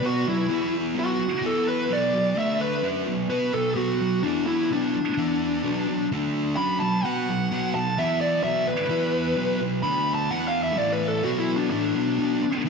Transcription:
0.02 0.25 B2 medium
0.02 0.26 F#3 medium
0.02 0.26 B3 loud
0.02 0.27 F#4 medium
0.26 0.45 B2 medium
0.26 0.45 F#3 medium
0.26 0.73 E4 medium
0.49 0.94 E3 medium
0.49 0.94 B3 medium
0.49 0.95 E4 medium
0.95 1.18 B2 medium
0.95 1.19 F#3 loud
0.95 1.19 B3 medium
0.99 1.43 F#4 medium
1.20 muted distorted electric guitar stroke medium
1.42 1.89 E3 medium
1.42 1.89 B3 loud
1.42 1.89 E4 loud
1.42 1.67 A4 medium
1.68 1.90 B4 medium
1.89 2.12 B2 medium
1.89 2.12 F#3 loud
1.89 2.13 B3 loud
1.89 2.37 D5 medium
2.13 2.32 B2 medium
2.13 2.32 F#3 medium
2.35 2.82 D3 medium
2.35 2.82 A3 medium
2.35 2.83 D4 medium
2.35 2.60 E5 medium
2.61 2.83 B4 medium
2.83 3.06 F#3 medium
2.83 3.06 C#4 medium
2.83 3.06 F#4 loud
3.07 3.26 B2 medium
3.07 3.26 F#3 medium
3.29 3.52 B3 medium
3.29 3.52 F#4 medium
3.29 3.53 B4 loud
3.29 3.53 B4 medium
3.53 3.72 B2 soft
3.53 3.72 F#3 medium
3.53 3.77 A4 medium
3.76 3.99 B2 medium
3.76 3.99 F#3 medium
3.76 4.00 B3 medium
3.76 4.22 F#4 medium
4.00 4.19 B2 medium
4.00 4.19 F#3 medium
4.23 4.70 E3 medium
4.23 4.70 B3 medium
4.23 4.46 D4 medium
4.23 4.70 E4 medium
4.47 4.70 E4 medium
4.71 4.93 B2 medium
4.71 4.94 F#3 medium
4.71 4.94 B3 loud
4.71 6.08 D4 medium
4.95 muted distorted electric guitar stroke medium
5.18 5.63 E3 medium
5.18 5.64 B3 medium
5.18 5.64 E4 loud
5.64 5.87 B2 medium
5.64 5.87 F#3 medium
5.64 5.87 B3 medium
5.88 6.06 B2 medium
5.88 6.06 F#3 medium
6.12 6.57 D3 medium
6.12 6.57 A3 medium
6.12 6.57 D4 medium
6.57 6.80 F#3 medium
6.57 6.80 C#4 medium
6.57 6.80 F#4 medium
6.57 6.80 B5 loud
6.80 7.00 B2 medium
6.80 7.00 F#3 medium
6.80 7.05 A5 medium
7.05 7.27 B3 medium
7.05 7.27 F#4 medium
7.05 7.27 B4 medium
7.05 7.72 F#5 medium
7.29 7.47 B2 medium
7.29 7.47 F#3 medium
7.51 7.73 B2 medium
7.51 7.73 F#3 medium
7.51 7.74 B3 medium
7.74 7.93 B2 medium
7.74 7.93 F#3 medium
7.74 7.97 A5 medium
7.98 8.43 E3 medium
7.98 8.42 B3 medium
7.98 8.43 E4 medium
7.98 8.21 E5 medium
8.21 8.43 D5 medium
8.43 8.66 B2 medium
8.43 8.67 F#3 loud
8.43 8.67 B3 medium
8.43 8.67 E5 medium
8.67 9.58 B4 medium
8.67 muted distorted electric guitar stroke medium
8.89 9.36 E3 medium
8.89 9.36 B3 medium
8.89 9.36 E4 medium
9.36 9.59 B2 medium
9.36 9.60 F#3 medium
9.36 9.60 B3 loud
9.61 9.79 B2 medium
9.61 9.80 F#3 medium
9.83 10.30 D3 medium
9.83 10.30 A3 medium
9.83 10.31 D4 medium
9.83 10.14 B5 loud
10.14 10.30 A5 medium
10.31 10.77 E3 medium
10.31 10.77 B3 loud
10.31 10.78 E4 loud
10.31 10.46 F#5 medium
10.48 10.63 F5 medium
10.63 10.78 E5 medium
10.77 11.23 A2 medium
10.77 11.24 E3 medium
10.77 11.24 A3 loud
10.77 10.93 D5 medium
10.93 11.08 B4 medium
11.08 11.24 A4 medium
11.24 11.70 B2 medium
11.24 11.71 F#3 medium
11.24 11.71 B3 loud
11.24 11.39 F#4 medium
11.40 11.55 E4 medium
11.56 11.69 D4 medium
11.70 11.94 A2 medium
11.70 11.94 E3 medium
11.70 11.94 A3 loud
11.70 12.62 D4 loud
11.95 12.17 B2 medium
11.95 12.18 F#3 medium
11.95 12.18 B3 medium
12.18 12.41 B2 medium
12.18 12.41 F#3 medium
12.18 12.41 B3 medium
12.42 muted distorted electric guitar stroke medium
12.65 12.69 E3 medium
12.65 12.69 B3 medium

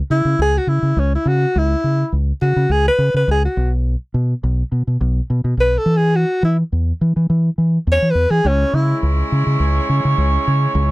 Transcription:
0.10 0.20 C#3 loud
0.10 0.38 E4 medium
0.25 0.34 C#3 medium
0.39 0.58 C#2 medium
0.39 0.59 G#4 loud
0.57 0.70 F#4 medium
0.67 0.77 C#3 medium
0.67 1.01 E4 medium
0.82 0.92 C#3 medium
0.96 1.15 C#2 medium
0.96 1.14 C#4 medium
1.15 1.30 E4 medium
1.25 1.44 C#3 loud
1.25 1.60 F#4 medium
1.55 1.74 C#2 loud
1.55 2.14 E4 medium
1.84 2.03 C#3 medium
2.12 2.31 C#2 medium
2.42 2.51 C#3 loud
2.42 2.73 F#4 medium
2.56 2.65 C#3 medium
2.69 2.88 C#2 loud
2.69 2.86 G#4 loud
2.88 3.13 B4 loud
2.98 3.09 C#3 medium
3.14 3.23 C#3 medium
3.14 3.28 B4 medium
3.28 3.46 C#2 loud
3.28 3.44 G#4 loud
3.45 3.71 F#4 medium
3.57 3.94 B1 loud
4.14 4.33 B2 loud
4.43 4.62 B1 loud
4.72 4.82 B2 medium
4.87 4.96 B2 medium
5.01 5.19 B1 loud
5.30 5.40 B2 medium
5.44 5.53 B2 medium
5.57 5.76 B1 loud
5.57 5.80 B4 loud
5.78 5.98 A4 medium
5.86 6.24 E3 loud
5.96 6.17 G#4 medium
6.16 6.44 F#4 medium
6.43 6.62 E3 loud
6.43 6.57 E4 medium
6.72 6.91 E2 medium
7.01 7.11 E3 medium
7.16 7.25 E3 medium
7.30 7.49 E3 loud
7.58 7.77 E3 medium
7.87 7.97 E2 loud
7.92 8.12 C#5 medium
8.02 8.11 E3 medium
8.11 8.32 B4 medium
8.15 8.25 E2 medium
8.30 8.40 E3 medium
8.30 8.49 G#4 medium
8.44 8.63 C#2 loud
8.44 10.91 G#3 medium
8.44 10.91 C#4 medium
8.44 8.76 C#4 medium
8.44 10.91 E4 medium
8.44 10.91 C#5 loud
8.73 8.92 C#3 loud
8.73 9.03 E4 medium
9.03 9.21 C#2 loud
9.32 9.42 C#3 loud
9.47 9.55 C#3 medium
9.60 9.79 C#2 loud
9.89 9.99 C#3 medium
10.05 10.13 C#3 medium
10.18 10.36 C#2 loud
10.47 10.66 C#3 loud
10.75 10.91 C#2 loud

